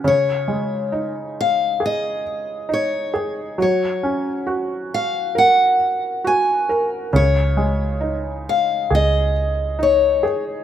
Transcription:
X:1
M:4/4
L:1/16
Q:1/4=68
K:Db
V:1 name="Steel-string acoustic guitar"
d6 f2 e4 d3 z | d4 z2 f2 g4 a3 z | d6 f2 e4 d3 z |]
V:2 name="Felt piano"
D,2 A,2 E4 A4 E2 A2 | G,2 D2 G4 B4 G2 B2 | D,2 A,2 E4 A4 E2 A2 |]
V:3 name="Fingered electric bass" clef=bass
z16 | z16 | D,,8 D,,8 |]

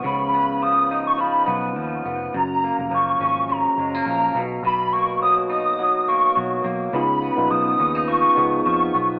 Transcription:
X:1
M:4/4
L:1/16
Q:"Swing 16ths" 1/4=105
K:C#mix
V:1 name="Soft synth lead"
b4 d'3 c' b4 z4 | a4 c'4 a4 a3 z | b2 c'2 d'2 d'4 c'4 z2 | b4 d'4 c'4 c'3 z |]
V:2 name="Tine electric piano"
z16 | z16 | z16 | [B,DEG]2 z [B,DEB]4- [B,DEB] z2 [B,DEG]4 z2 |]
V:3 name="Clean electric guitar" clef=bass
[C,E,B,D]2 B,2 E,2 D2 E,2 B,2 E,2 B,2 | F,,2 A,2 E,2 C2 C,2 G, A, E,2 B,,2 | B,,2 A,2 F,2 D2 F,2 A,2 F,2 A,2 | C,2 B,2 E,2 C D E,2 B,2 E,2 B,2 |]
V:4 name="Picked electric bass" clef=bass
C,,8- C,,2 B,,,2 D,,2 E,,,2 | F,,,3 E,,, F,,,2 G,,,4 F,,,2 A,,,2 B,,,2 | B,,,8- B,,,2 D,,2 B,,,2 B,,,2 | C,,3 A,,, B,,,2 D,,4 C,,2 E,,2 B,,,2 |]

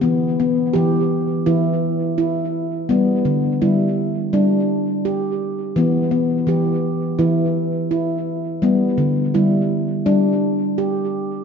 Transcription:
X:1
M:4/4
L:1/8
Q:1/4=84
K:Em
V:1 name="Handpan"
B,2 G2 E2 E2 | B,2 E2 D2 G2 | B,2 G2 E2 E2 | B,2 E2 D2 G2 |]
V:2 name="Handpan" clef=bass
E, B, E,2 E, z3 | G, D, G,2 G, z3 | E, B, E,2 E, z3 | G, D, G,2 G, z3 |]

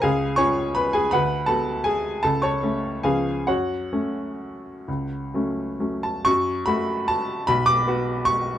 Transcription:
X:1
M:3/4
L:1/8
Q:1/4=149
K:F#m
V:1 name="Upright piano"
[G^eg]2 [cgc']2 [Bb] [Gg] | [Bfb]2 [Aa]2 [Gg]2 | [Aa] [cac']3 [G^eg]2 | [Fcf]6- |
[Fcf]4- [Fcf] a | c'2 b2 a2 | b d'3 c'2 |]
V:2 name="Upright piano"
C,,2 [C^E]4 | D,,2 [B,F]4 | C,,2 [A,C]2 [C,,^E,B,C]2 | F,,2 [A,C]4 |
C,,2 [F,A,C]2 [F,A,C]2 | F,,2 [A,F]4 | B,,,2 [B,F]4 |]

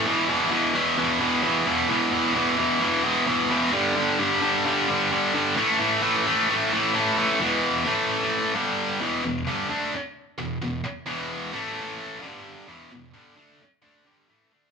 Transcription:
X:1
M:4/4
L:1/8
Q:1/4=131
K:Em
V:1 name="Distorted electric guitar" clef=bass
[E,,B,,E,] [E,,B,,E,] [E,,B,,E,] [E,,B,,E,] [E,,B,,E,] [E,,B,,E,] [E,,B,,E,] [E,,B,,E,] | [E,,B,,E,] [E,,B,,E,] [E,,B,,E,] [E,,B,,E,] [E,,B,,E,] [E,,B,,E,] [E,,B,,E,] [E,,B,,E,] | [G,,D,G,] [G,,D,G,] [G,,D,G,] [G,,D,G,] [G,,D,G,] [G,,D,G,] [G,,D,G,] [G,,D,G,] | [A,,E,A,] [A,,E,A,] [A,,E,A,] [A,,E,A,] [A,,E,A,] [A,,E,A,] [A,,E,A,] [A,,E,A,] |
[E,,B,,E,]2 [A,,E,A,]3 [G,,D,G,]2 [E,,B,,E,] | [E,,B,,] [G,,D,G,] [D,A,D] z2 [E,,B,,] [E,,B,,] z | [E,,B,,E,]2 [A,,E,A,]3 [G,,D,G,]2 [E,,B,,E,] | [E,,B,,] [G,,D,G,] [D,A,D] z [D,A,D] [G,,D,G,] [A,,E,A,] [D,A,D] |]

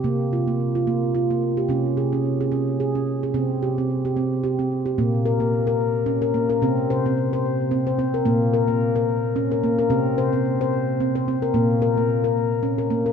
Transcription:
X:1
M:3/4
L:1/16
Q:"Swing 16ths" 1/4=110
K:none
V:1 name="Handpan"
_B,2 F B,2 F B,2 F B,2 G | _D2 _A D2 A D2 A D2 A | C2 G C2 G C2 G C2 G | _B,2 _B B,2 B2 z _D B B, B |
C2 c C2 c2 z C c C _B | _B,2 _B B,2 B2 z _D B B, B | C2 c C2 c2 z C c C _B | _B,2 _B B,2 B2 z _D B B, B |]
V:2 name="Handpan" clef=bass
C,12 | C,12 | C,12 | _B,,12 |
C,12 | _B,,12 | C,12 | _B,,12 |]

